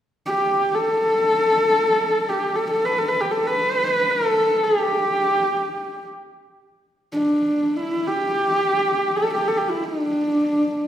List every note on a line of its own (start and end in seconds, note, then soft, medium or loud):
0.26 0.76 G4 medium
0.74 2.30 A4 medium
2.29 2.57 G4 medium
2.55 2.69 A4 medium
2.70 2.86 A4 medium
2.85 3.00 B4 medium
2.98 3.10 A4 medium
3.08 3.22 B4 medium
3.20 3.33 G4 medium
3.31 3.48 A4 medium
3.46 4.12 B4 medium
4.11 4.65 A4 medium
4.63 6.05 G4 medium
7.12 7.78 D4 medium
7.77 8.08 E4 medium
8.07 9.19 G4 medium
9.17 9.33 A4 medium
9.33 9.49 G4 medium
9.48 9.59 A4 medium
9.58 9.71 G4 medium
9.70 9.85 E4 medium
9.84 10.87 D4 medium